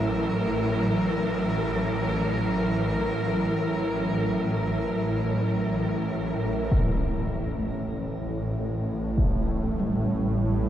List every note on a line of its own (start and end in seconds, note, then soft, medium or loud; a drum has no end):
0.00 6.70 A1 medium
0.00 6.70 A2 medium
0.00 6.73 E3 medium
0.00 4.23 F#3 medium
0.00 6.73 F#3 medium
0.00 6.74 E4 medium
0.00 6.73 A#4 medium
0.00 6.74 E5 medium
6.71 10.69 A1 medium
6.71 10.69 A2 medium
6.71 impact medium
9.18 impact medium
9.79 10.69 G3 medium